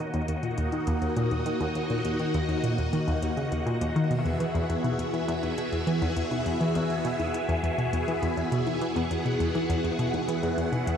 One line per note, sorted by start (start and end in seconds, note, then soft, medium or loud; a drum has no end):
0.00 0.13 D#3 medium
0.00 4.07 A#3 medium
0.00 4.07 D#4 medium
0.00 4.07 F#4 medium
0.00 10.97 F#4 medium
0.00 4.07 D#5 medium
0.00 10.97 F#5 medium
0.14 0.19 D#2 medium
0.14 closed hi-hat soft
0.14 high conga medium
0.28 0.34 D#2 medium
0.28 closed hi-hat medium
0.43 0.57 A#2 medium
0.43 closed hi-hat soft
0.58 0.67 D#2 medium
0.58 closed hi-hat medium
0.72 0.86 D#3 medium
0.72 closed hi-hat soft
0.72 high conga medium
0.87 0.93 D#2 loud
0.87 closed hi-hat medium
1.02 1.07 D#2 medium
1.02 closed hi-hat soft
1.17 1.30 A#2 medium
1.17 closed hi-hat medium
1.31 1.41 D#2 medium
1.31 closed hi-hat soft
1.31 high conga medium
1.46 1.60 D#3 medium
1.46 closed hi-hat medium
1.61 1.66 D#2 loud
1.61 closed hi-hat soft
1.61 high conga medium
1.75 1.81 D#2 medium
1.75 closed hi-hat medium
1.90 2.04 A#2 medium
1.90 closed hi-hat soft
2.05 2.14 D#2 medium
2.05 closed hi-hat medium
2.19 2.33 D#3 medium
2.19 closed hi-hat soft
2.34 2.40 D#2 loud
2.34 closed hi-hat medium
2.49 2.54 D#2 medium
2.49 closed hi-hat soft
2.49 high conga soft
2.64 2.77 A#2 medium
2.64 closed hi-hat medium
2.78 2.88 D#2 medium
2.78 closed hi-hat soft
2.93 3.07 D#3 medium
2.93 closed hi-hat medium
3.08 3.13 D#2 loud
3.08 closed hi-hat soft
3.22 3.32 D#2 medium
3.22 closed hi-hat medium
3.37 3.51 C#3 medium
3.37 closed hi-hat soft
3.52 3.61 D#2 medium
3.52 closed hi-hat medium
3.66 3.80 A#2 loud
3.66 closed hi-hat soft
3.81 3.90 D#2 loud
3.81 closed hi-hat medium
3.96 4.05 D#3 loud
3.96 closed hi-hat soft
3.96 high conga medium
4.11 4.24 B2 medium
4.11 10.97 B3 medium
4.11 10.97 E4 medium
4.11 10.97 G#4 medium
4.11 8.77 E5 medium
4.11 closed hi-hat medium
4.25 4.35 E2 medium
4.25 closed hi-hat soft
4.40 4.54 E3 medium
4.40 closed hi-hat medium
4.55 4.60 E2 loud
4.55 closed hi-hat soft
4.70 4.75 E2 medium
4.70 closed hi-hat medium
4.84 4.98 B2 medium
4.84 closed hi-hat soft
4.84 high conga soft
4.99 5.08 E2 medium
4.99 closed hi-hat medium
5.14 5.27 E3 medium
5.14 closed hi-hat soft
5.28 5.34 E2 loud
5.28 closed hi-hat medium
5.43 5.49 E2 medium
5.43 closed hi-hat soft
5.43 high conga medium
5.58 5.72 B2 medium
5.58 closed hi-hat medium
5.72 5.82 E2 medium
5.72 closed hi-hat soft
5.87 6.01 E3 medium
5.87 closed hi-hat medium
6.02 6.07 E2 loud
6.02 closed hi-hat soft
6.02 high conga soft
6.17 6.22 E2 medium
6.17 closed hi-hat medium
6.31 6.45 B2 medium
6.31 closed hi-hat soft
6.31 high conga medium
6.46 6.55 E2 medium
6.46 closed hi-hat medium
6.61 6.74 E3 medium
6.61 closed hi-hat soft
6.75 6.81 E2 loud
6.75 closed hi-hat medium
6.90 6.96 E2 medium
6.90 closed hi-hat soft
7.05 7.19 B2 medium
7.05 closed hi-hat medium
7.19 7.29 E2 medium
7.19 closed hi-hat soft
7.19 high conga soft
7.34 7.48 E3 medium
7.34 closed hi-hat medium
7.49 7.54 E2 loud
7.49 closed hi-hat soft
7.63 7.69 E2 medium
7.63 closed hi-hat medium
7.78 7.92 B2 medium
7.78 closed hi-hat soft
7.93 8.02 E2 medium
7.93 closed hi-hat medium
8.08 8.22 E3 medium
8.08 closed hi-hat soft
8.22 8.28 E2 loud
8.22 closed hi-hat medium
8.37 8.43 E2 medium
8.37 closed hi-hat soft
8.52 8.66 B2 medium
8.52 closed hi-hat medium
8.67 8.76 E2 medium
8.67 closed hi-hat soft
8.67 high conga medium
8.81 8.95 E3 medium
8.81 10.97 F#5 medium
8.81 closed hi-hat medium
8.96 9.02 E2 loud
8.96 closed hi-hat soft
9.11 9.16 E2 medium
9.11 closed hi-hat medium
9.25 9.39 B2 medium
9.25 closed hi-hat soft
9.40 9.49 E2 medium
9.40 closed hi-hat medium
9.55 9.69 E3 medium
9.55 closed hi-hat soft
9.55 high conga medium
9.70 9.75 E2 loud
9.70 closed hi-hat medium
9.84 9.90 E2 medium
9.84 closed hi-hat soft
9.99 10.13 B2 medium
9.99 closed hi-hat medium
10.14 10.23 E2 medium
10.14 closed hi-hat soft
10.14 high conga medium
10.28 10.42 E3 medium
10.28 closed hi-hat medium
10.43 10.49 E2 loud
10.43 closed hi-hat soft
10.58 10.63 E2 medium
10.58 closed hi-hat medium
10.72 10.86 B2 medium
10.72 closed hi-hat soft
10.72 high conga soft
10.87 10.96 E2 medium
10.87 closed hi-hat medium